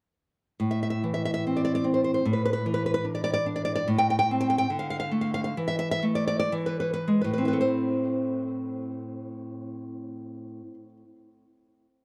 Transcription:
0.60 2.21 A2 medium
0.71 0.82 E5 medium
0.83 0.89 E5 medium
0.90 1.02 E5 medium
1.04 2.25 E3 soft
1.14 1.24 E5 medium
1.25 1.33 E5 medium
1.34 1.44 E5 medium
1.47 1.83 C4 soft
1.57 1.63 D5 medium
1.65 1.74 D5 medium
1.75 1.85 D5 medium
1.84 2.26 C4 soft
1.94 2.03 C5 soft
2.04 2.13 C5 medium
2.14 2.25 C5 medium
2.25 3.85 A2 medium
2.33 2.44 B4 medium
2.45 2.52 B4 medium
2.53 2.65 B4 medium
2.66 3.87 E3 soft
2.74 2.85 B4 medium
2.86 2.93 B4 medium
2.94 3.05 B4 medium
3.05 3.45 D4 soft
3.15 3.23 D5 medium
3.24 3.32 D5 medium
3.34 3.46 D5 medium
3.46 3.89 D4 medium
3.56 3.64 D5 medium
3.65 3.74 D5 medium
3.75 3.88 D5 medium
3.88 4.67 A2 medium
3.98 4.09 G5 medium
4.10 4.18 G5 medium
4.19 4.29 G5 loud
4.31 4.67 C4 medium
4.41 4.49 G5 medium
4.50 4.57 G5 loud
4.58 4.69 G5 loud
4.70 5.54 D3 medium
4.79 4.89 F5 medium
4.90 4.98 F5 medium
5.00 5.11 F5 medium
5.12 5.52 A3 soft
5.21 5.33 F5 medium
5.34 5.43 F5 medium
5.44 5.56 F5 medium
5.57 6.51 E3 medium
5.68 5.78 E5 medium
5.79 5.90 E5 medium
5.91 6.04 E5 loud
6.03 6.50 A3 medium
6.15 6.26 D5 medium
6.27 6.38 D5 medium
6.40 6.53 D5 medium
6.52 7.61 E3 medium
6.66 6.79 B4 medium
6.80 6.92 B4 medium
6.94 7.08 B4 medium
7.08 7.24 G#3 soft
7.21 10.60 A2 medium
7.21 7.32 B4 medium
7.33 7.47 B4 medium
7.38 10.74 C4 medium
7.45 10.81 E4 medium
7.45 7.60 B4 medium
7.53 10.89 A4 medium
7.61 10.97 C5 medium

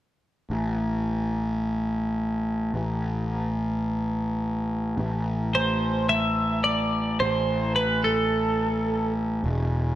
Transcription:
0.50 2.70 A1 soft
2.74 4.94 A1 medium
4.98 7.17 A1 medium
5.55 6.09 C5 medium
6.09 6.63 E5 medium
6.64 7.20 D5 medium
7.20 9.40 A1 medium
7.20 7.72 C5 medium
7.76 8.02 B4 medium
8.04 9.12 A4 medium
9.44 9.95 E1 medium

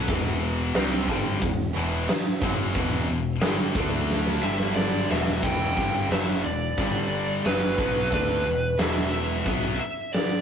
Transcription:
0.08 0.71 E1 medium
0.08 0.74 E2 medium
0.08 0.75 B2 loud
0.08 0.75 E3 loud
0.08 kick loud
0.08 open hi-hat medium
0.74 1.06 C2 loud
0.74 1.08 C3 medium
0.74 1.08 G3 loud
0.74 1.08 C4 medium
0.74 snare loud
0.74 open hi-hat medium
1.08 1.40 G1 loud
1.08 1.41 G2 medium
1.08 1.41 D3 medium
1.08 1.42 G3 loud
1.08 kick medium
1.42 1.73 E1 medium
1.42 1.69 E2 medium
1.42 1.69 B2 medium
1.42 kick medium
1.42 open hi-hat medium
1.76 2.07 E1 medium
1.76 2.08 E2 medium
1.76 2.08 B2 loud
1.76 2.09 E3 loud
2.08 muted picked electric bass stroke soft
2.08 muted distorted electric guitar stroke medium
2.08 snare loud
2.08 open hi-hat medium
2.42 2.73 F#1 medium
2.42 2.75 F#2 medium
2.42 2.76 C#3 medium
2.42 2.76 F#3 medium
2.42 kick loud
2.75 3.07 E1 medium
2.75 3.09 E2 medium
2.75 3.09 B2 loud
2.75 3.09 E3 loud
2.75 kick loud
2.75 open hi-hat medium
3.09 3.40 E1 medium
3.09 3.37 E2 medium
3.09 3.37 B2 medium
3.41 3.74 G1 loud
3.41 snare loud
3.41 open hi-hat medium
3.45 3.76 G2 medium
3.45 3.76 D3 medium
3.45 3.77 G3 loud
3.75 4.39 D2 loud
3.75 4.43 D3 medium
3.75 4.43 A3 loud
3.75 4.43 D4 loud
3.75 kick loud
4.10 snare medium
4.27 snare medium
4.43 5.06 G1 medium
4.43 5.09 G2 medium
4.43 5.10 D3 medium
4.43 5.10 G3 medium
4.43 4.74 E5 loud
4.59 snare medium
4.75 5.10 D5 loud
4.75 snare medium
5.11 5.42 E1 medium
5.11 5.43 E2 medium
5.11 5.43 B2 loud
5.11 5.43 E3 medium
5.11 5.45 E5 medium
5.11 snare medium
5.27 snare medium
5.42 5.74 E1 medium
5.42 5.77 E2 medium
5.42 5.77 B2 medium
5.42 6.06 G5 loud
5.42 kick medium
5.42 crash loud
5.46 5.77 E3 medium
5.77 6.08 G1 medium
5.77 6.10 G2 medium
5.77 6.11 D3 medium
5.77 6.11 G3 medium
5.77 kick loud
6.08 6.42 F#1 medium
6.08 6.42 F#2 medium
6.08 6.42 C#3 medium
6.08 6.43 E5 loud
6.08 snare loud
6.08 open hi-hat soft
6.13 6.44 F#2 medium
6.13 6.45 C#3 medium
6.13 6.44 F#3 medium
6.45 6.76 E1 medium
6.45 6.71 E2 medium
6.45 6.71 B2 medium
6.45 7.48 D5 medium
6.78 7.41 G1 medium
6.78 7.44 G2 medium
6.78 7.44 D3 medium
6.78 7.45 G3 medium
6.78 kick loud
6.78 open hi-hat medium
7.45 7.76 F#1 medium
7.45 7.78 F#2 medium
7.45 7.78 C#3 medium
7.45 7.79 F#3 loud
7.45 8.13 B4 medium
7.45 snare loud
7.45 open hi-hat medium
7.78 8.09 B1 medium
7.78 8.11 B2 medium
7.78 8.12 F#3 medium
7.78 8.12 B3 medium
7.78 kick medium
8.12 8.43 D2 medium
8.12 8.45 D3 medium
8.12 8.45 A3 medium
8.12 8.46 D4 loud
8.12 8.82 B4 medium
8.12 kick medium
8.12 open hi-hat medium
8.47 8.77 E1 medium
8.47 8.73 E2 medium
8.47 8.73 B2 medium
8.78 9.42 E1 medium
8.78 9.45 E2 medium
8.78 9.45 B2 medium
8.78 9.46 E3 loud
8.78 9.12 E5 loud
8.78 snare loud
8.78 open hi-hat medium
9.13 9.79 E5 medium
9.46 9.77 B1 medium
9.46 9.79 B2 medium
9.46 9.79 F#3 loud
9.46 9.80 B3 loud
9.46 kick loud
9.46 open hi-hat medium
9.80 10.13 E5 medium
10.13 10.41 D5 medium
10.13 snare loud
10.13 open hi-hat medium

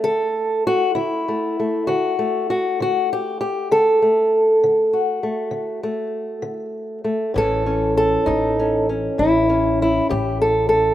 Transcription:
0.00 1.28 A3 soft
0.00 0.65 A4 loud
0.04 0.59 D3 medium
0.67 0.95 F#4 loud
0.95 1.51 D3 medium
0.95 1.87 E4 medium
1.28 1.59 A3 soft
1.60 2.18 A3 soft
1.87 2.43 D3 medium
1.87 2.48 F#4 medium
2.19 4.02 A3 soft
2.50 2.79 F#4 medium
2.80 3.34 D3 medium
2.80 3.11 F#4 medium
3.13 3.39 G4 medium
3.41 3.70 G4 medium
3.71 4.25 D3 medium
3.71 5.00 A4 medium
4.02 5.23 A3 soft
4.64 5.17 D3 medium
4.93 7.32 F#4 soft
5.23 5.83 A3 soft
5.51 6.06 D3 medium
5.83 7.04 A3 medium
6.42 6.98 D3 medium
7.04 7.35 A3 soft
7.34 8.16 A1 medium
7.34 7.89 A2 medium
7.34 10.94 E3 medium
7.34 7.66 C#4 soft
7.34 7.96 A4 loud
7.66 8.59 C#4 soft
7.97 8.88 A4 loud
8.26 9.07 A1 medium
8.26 8.82 A2 medium
8.26 8.87 D#4 medium
8.59 8.89 C#4 soft
8.89 9.48 C#4 soft
9.18 9.99 A1 medium
9.18 9.73 A2 medium
9.18 9.79 E4 medium
9.50 10.94 C#4 soft
9.82 10.10 E4 medium
10.09 10.90 A1 loud
10.09 10.64 A2 medium
10.09 10.40 G4 medium
10.42 10.68 A4 medium
10.69 10.94 A4 medium

